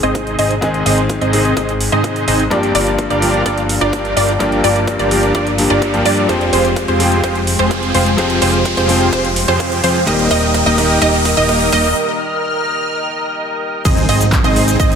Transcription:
Already playing: G#2 D#3 G#3 C4 G#4 C5 D#5 C6, riser
0.03 G#1 C4 D#4 G#4 C5 D#5, closed hi-hat
0.15 kick, closed hi-hat
0.27 closed hi-hat
0.39 G#1 C4 D#4 G#4 C5 D#5, open hi-hat
0.51 closed hi-hat
0.61 G#1 G#2 D#3 G#3 C4 D#4 G#4 C5 D#5 D6, kick, closed hi-hat
0.74 closed hi-hat
0.86 G#1 C4 D#4 G#4 C5 D#5, open hi-hat
0.98 closed hi-hat
1.09 kick, closed hi-hat
1.21 G#1 C4 D#4 G#4 C5 D#5, closed hi-hat
1.32 G#2 D#3 G#3 C4 G#4, open hi-hat
1.45 closed hi-hat
1.57 G#1 C4 D#4 G#4 C5 D#5, kick, closed hi-hat
1.69 closed hi-hat
1.81 open hi-hat
1.92 G#2 C4 D#4 G#4 C5 D#5, closed hi-hat
2.04 kick, closed hi-hat
2.16 closed hi-hat
2.28 G#1 C4 D#4 G#4 C5 D#5, open hi-hat
2.40 closed hi-hat
2.50 G1 G2 F3 A#3 D4 F4 G4 A#4 D5 F5 A#5, kick, closed hi-hat
2.63 closed hi-hat
2.75 G1 D4 F4 G4 A#4 D5, open hi-hat
2.87 closed hi-hat
2.99 kick, closed hi-hat
3.10 G1 D4 F4 G4 A#4 D5, closed hi-hat
3.21 G2 F3 A#3 D4 G4, open hi-hat
3.46 G1 D4 F4 G4 A#4 D5, kick, closed hi-hat
3.58 closed hi-hat
3.69 open hi-hat
3.81 G1 D4 F4 G4 A#4 D5, closed hi-hat
3.93 kick, closed hi-hat
4.05 closed hi-hat
4.17 G1 D4 F4 G4 A#4 D5, open hi-hat
4.29 closed hi-hat
4.39 G1 G2 F3 A#3 D4 F4 G4 A#4 D5, kick, closed hi-hat
4.52 closed hi-hat
4.64 G1 D4 F4 G4 A#4 D5, open hi-hat
4.76 closed hi-hat
4.87 kick, closed hi-hat
4.99 G1 D4 F4 G4 A#4 D5, closed hi-hat
5.11 G2 F3 A#3 D4 G4, open hi-hat
5.23 closed hi-hat
5.35 G1 D4 F4 G4 A#4 D5, kick, closed hi-hat
5.47 closed hi-hat
5.58 G2 F3 A#3 D4 G4, open hi-hat
5.70 G1 D4 F4 G4 A#4 D5, closed hi-hat
5.82 kick, closed hi-hat
5.93 G2 F3 A#3 D4 G4, closed hi-hat
6.05 G2 D4 F4 G4 A#4 D5, open hi-hat
6.28 F1 F3 G#3 C4 F4 G4 G#4 C5 G5 C6, kick, closed hi-hat
6.41 closed hi-hat
6.53 F1 C4 F4 G4 G#4 C5, open hi-hat
6.65 closed hi-hat
6.76 kick, closed hi-hat
6.88 F1 C4 F4 G4 G#4 C5, closed hi-hat
6.99 F3 G#3 C4 G5, open hi-hat
7.12 closed hi-hat
7.24 F1 C4 F4 G4 G#4 C5, kick, closed hi-hat
7.35 closed hi-hat
7.47 open hi-hat
7.59 F1 C4 F4 G4 G#4 C5, closed hi-hat
7.71 kick, closed hi-hat
7.83 closed hi-hat
7.94 F1 C4 F4 G4 G#4 C5, open hi-hat
8.06 closed hi-hat
8.17 F1 F3 G#3 C4 F4 G4 G#4 C5, kick, closed hi-hat
8.30 closed hi-hat
8.42 F1 C4 F4 G4 G#4 C5, open hi-hat
8.54 closed hi-hat
8.65 kick, closed hi-hat
8.77 F1 C4 F4 G4 G#4 C5, closed hi-hat
8.88 F3 G#3 C4 G5, open hi-hat
9.01 closed hi-hat
9.13 F1 C4 F4 G4 G#4 C5, kick, closed hi-hat
9.24 closed hi-hat
9.36 open hi-hat
9.48 F2 C4 F4 G4 G#4 C5, closed hi-hat
9.60 kick, closed hi-hat
9.72 closed hi-hat
9.84 F2 C4 F4 G4 G#4 C5, open hi-hat
9.96 closed hi-hat
10.06 D#1 D#3 G3 A#3 D#4 G4 A#4 D#5 D#6, kick, closed hi-hat
10.19 closed hi-hat
10.31 D#1 A#3 D#4 G4 A#4 D#5, kick, open hi-hat
10.43 closed hi-hat
10.54 kick, closed hi-hat
10.66 D#1 A#3 D#4 G4 A#4 D#5, closed hi-hat
10.77 D#3 G3 A#3 G4, kick, open hi-hat
10.90 closed hi-hat
11.02 D#1 A#3 D#4 G4 A#4 D#5, kick, closed hi-hat
11.14 closed hi-hat
11.25 kick, open hi-hat
11.37 D#1 A#3 D#4 G4 A#4 D#5, closed hi-hat
11.49 kick, closed hi-hat
11.61 closed hi-hat
11.72 D#1 A#3 D#4 G4 A#4 D#5, kick, open hi-hat
11.84 closed hi-hat
11.96 F6
13.85 G#1 G#3 C4 D#4 G#4 C5 D#5, kick, closed hi-hat, crash, impact, shaker
13.97 closed hi-hat, shaker
14.09 G#1 C4 D#4 G#4 C5 D#5, open hi-hat
14.21 closed hi-hat, shaker
14.32 kick, clap, closed hi-hat, shaker
14.44 G#1 C4 D#4 G#4 C5 D#5, closed hi-hat, shaker
14.56 open hi-hat
14.68 closed hi-hat, shaker
14.80 G#1 C4 D#4 G#4 C5 D#5, kick, closed hi-hat, shaker
14.92 closed hi-hat, shaker

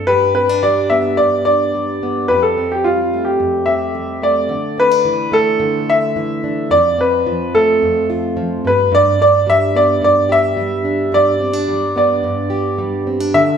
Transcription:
0.07 G2 G4 B4
0.35 C4 B4
0.49 D4
0.63 G3 D5
0.90 B3 E5
1.17 G2 D5
1.45 D4 D5
1.74 G3
2.03 B3
2.28 F2 G4 B4
2.43 A4
2.57 C4
2.72 G4
2.84 G3 F4
3.13 A3
3.25 G4
3.40 F2
3.66 C4 E5
3.95 G3
4.22 A3 D5
4.49 D3
4.78 C4 B4
4.91 D4
5.05 E3
5.32 A3 A4
5.60 D3
5.90 E5
6.16 E3
6.44 D4
6.71 F2 D5
6.98 C4 B4
7.26 F3
7.55 A3 A4
7.82 F2
8.10 F4
8.37 F3
8.65 G2 B4
8.92 G2 D5
9.19 D4 D5
9.47 G3 E5
9.75 B3 D5
10.02 G2 D5
10.29 G4 E5
10.57 G3
10.85 D4
11.12 G2 D5
11.40 C4
11.53 D4
11.68 G3
11.96 B3 D5
12.24 G2
12.50 G4
12.78 G3
13.07 C4
13.20 D4
13.34 D3 E5

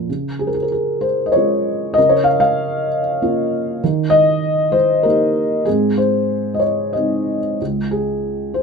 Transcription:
Already playing: A#2 F3 F4 A#4
0.10 C#3
0.39 G#4
0.47 A#4
0.54 G#4
0.62 A#4
0.72 G#4
1.01 C5
1.26 D#5
1.32 G#3 C#5
1.36 C#4 F4
1.94 D#5
1.98 C#3 A#4
2.09 C#5
2.24 F5
2.40 F5
3.22 A#3 C#4 F4
3.84 D#3
4.10 D#5
4.72 C5
5.03 A#3 D#4 G4 A#4
5.65 G#2 C4 G#4
5.97 C5
6.54 D#5
6.59 C#5
6.93 G#3 C4 D#4 D#5
7.61 C#2
7.91 G#4
8.54 C5

